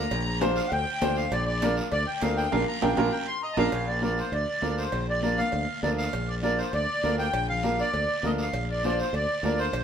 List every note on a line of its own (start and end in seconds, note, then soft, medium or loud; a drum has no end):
0.00 0.39 A#5 loud
0.11 0.60 A#1 loud
0.11 cowbell loud
0.11 long guiro medium
0.41 0.62 D4 medium
0.41 0.63 F4 medium
0.41 0.63 C5 medium
0.41 cowbell medium
0.41 high conga loud
0.41 short guiro medium
0.56 0.71 F5 loud
0.56 short guiro medium
0.69 0.84 D2 loud
0.69 0.71 F#5 medium
0.69 cowbell medium
0.69 high conga soft
0.69 long guiro medium
0.73 1.16 G5 loud
1.01 1.26 D2 loud
1.01 1.23 D4 medium
1.01 1.23 F4 medium
1.01 1.23 C5 medium
1.01 cowbell medium
1.01 high conga medium
1.01 low conga medium
1.01 low timbale medium
1.01 short guiro medium
1.16 1.32 F5 medium
1.16 short guiro medium
1.31 1.80 A#1 loud
1.31 1.44 D5 loud
1.31 cowbell loud
1.31 high conga soft
1.31 long guiro medium
1.46 1.76 D5 medium
1.62 1.83 D4 medium
1.62 1.84 F4 medium
1.62 1.84 A#4 medium
1.62 cowbell medium
1.62 high conga loud
1.62 short guiro medium
1.77 short guiro medium
1.92 2.04 D2 loud
1.92 2.07 D5 loud
1.92 cowbell medium
1.92 high conga soft
1.92 long guiro medium
2.07 2.22 G5 medium
2.22 2.46 D2 loud
2.22 2.43 D4 medium
2.22 2.43 F4 medium
2.22 2.44 A#4 medium
2.22 2.37 F5 medium
2.22 cowbell medium
2.22 high conga medium
2.22 short guiro medium
2.37 2.52 G5 medium
2.37 short guiro medium
2.51 2.64 A#1 loud
2.51 2.62 D4 loud
2.51 2.62 F4 medium
2.51 2.62 A#4 loud
2.51 2.66 F5 loud
2.51 high conga loud
2.51 high timbale medium
2.51 long guiro loud
2.68 2.82 A#5 medium
2.82 2.94 A#1 medium
2.82 2.92 D4 medium
2.82 2.92 F4 loud
2.82 2.92 A#4 medium
2.82 2.97 G5 loud
2.82 high conga loud
2.82 high timbale loud
2.82 long guiro loud
2.97 3.09 A#1 loud
2.97 3.07 D4 loud
2.97 3.07 F4 loud
2.97 3.07 A#4 loud
2.97 3.12 A#5 loud
2.97 high conga loud
2.97 high timbale loud
2.97 long guiro loud
3.12 3.27 G5 medium
3.27 3.42 C6 medium
3.42 3.57 D#5 medium
3.42 3.56 A#5 medium
3.53 3.69 A#1 medium
3.53 3.67 A#4 loud
3.53 3.56 A5 medium
3.53 high conga loud
3.53 high timbale loud
3.53 long guiro loud
3.58 3.67 D4 loud
3.58 3.67 F4 loud
3.58 3.89 F5 loud
3.58 3.72 A#5 medium
3.72 4.21 A#1 medium
3.72 cowbell loud
3.72 long guiro medium
3.88 4.02 D5 medium
4.01 4.23 D4 medium
4.01 4.23 F4 medium
4.01 4.24 A#4 medium
4.01 4.19 D5 medium
4.01 high conga medium
4.01 short guiro medium
4.18 4.34 C5 medium
4.18 short guiro medium
4.32 4.44 D2 loud
4.32 4.75 D5 medium
4.32 cowbell medium
4.32 long guiro medium
4.62 4.87 D2 medium
4.62 4.83 D4 medium
4.62 4.84 F4 medium
4.62 4.84 A#4 medium
4.62 high conga medium
4.62 low timbale medium
4.62 short guiro medium
4.78 5.06 C5 medium
4.78 short guiro medium
4.92 5.41 A#1 medium
4.92 cowbell medium
4.92 long guiro medium
5.10 5.40 D5 medium
5.22 5.44 D4 medium
5.22 5.44 F4 medium
5.22 5.44 A#4 medium
5.22 high conga medium
5.22 short guiro medium
5.38 5.80 F5 medium
5.38 high conga medium
5.38 short guiro medium
5.52 5.65 D2 loud
5.52 cowbell medium
5.52 long guiro medium
5.83 6.07 D2 loud
5.83 6.04 D4 medium
5.83 6.04 F4 medium
5.83 6.04 A#4 medium
5.83 5.90 D5 medium
5.83 high conga medium
5.83 low conga medium
5.83 short guiro medium
5.98 6.29 F5 loud
5.98 short guiro medium
6.13 6.61 A#1 medium
6.13 cowbell loud
6.13 long guiro medium
6.28 6.35 D5 medium
6.42 6.64 D4 medium
6.42 6.64 F4 medium
6.42 6.65 A#4 medium
6.42 6.59 D5 medium
6.42 high conga medium
6.42 short guiro medium
6.58 6.72 C5 medium
6.58 short guiro medium
6.73 6.85 D2 medium
6.73 7.16 D5 loud
6.73 cowbell medium
6.73 long guiro medium
7.03 7.28 D2 medium
7.03 7.24 D4 medium
7.03 7.25 F4 medium
7.03 7.25 A#4 medium
7.03 high conga medium
7.03 short guiro medium
7.18 7.47 G5 loud
7.18 short guiro medium
7.33 7.82 A#1 loud
7.33 cowbell loud
7.33 long guiro medium
7.48 7.80 F5 medium
7.48 low conga medium
7.63 7.85 D4 medium
7.63 7.85 F4 medium
7.63 7.85 A#4 medium
7.63 high conga medium
7.63 short guiro medium
7.78 8.26 D5 medium
7.78 short guiro medium
7.93 8.06 D2 medium
7.93 cowbell medium
7.93 long guiro medium
8.23 8.47 D2 medium
8.23 8.45 D4 medium
8.23 8.45 F4 medium
8.23 8.45 A#4 medium
8.23 8.31 D#5 medium
8.23 high conga medium
8.23 low conga medium
8.23 short guiro medium
8.38 8.68 F5 medium
8.38 short guiro medium
8.53 9.01 A#1 medium
8.53 cowbell loud
8.53 long guiro medium
8.71 8.84 D5 medium
8.83 9.05 D4 medium
8.83 9.06 F4 medium
8.83 9.06 C5 medium
8.83 8.99 D5 medium
8.83 high conga medium
8.83 short guiro medium
8.99 9.14 C5 medium
8.99 short guiro medium
9.13 9.25 D2 loud
9.13 9.43 D5 medium
9.13 cowbell medium
9.13 long guiro medium
9.43 9.68 D2 medium
9.43 9.65 D4 medium
9.43 9.66 F4 medium
9.43 9.66 A#4 medium
9.43 9.59 D5 medium
9.43 high conga medium
9.43 low timbale medium
9.43 short guiro medium
9.58 9.84 C5 medium
9.58 short guiro medium
9.73 9.84 A#1 loud
9.73 cowbell loud
9.73 long guiro medium